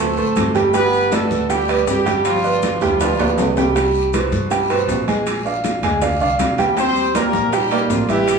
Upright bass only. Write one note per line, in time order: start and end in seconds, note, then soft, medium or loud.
0.00 0.15 D2 loud
0.17 0.35 A1 medium
0.36 1.25 G1 loud
1.31 1.83 D2 loud
1.87 2.75 G1 loud
2.81 3.16 D2 loud
3.19 3.36 D2 medium
3.38 4.26 C2 loud
4.32 4.84 G2 medium
4.88 5.77 A#1 loud
5.83 6.18 D2 loud
6.20 6.38 C2 medium
6.39 7.27 D#2 medium
7.33 7.86 A#1 loud
7.90 8.39 A1 loud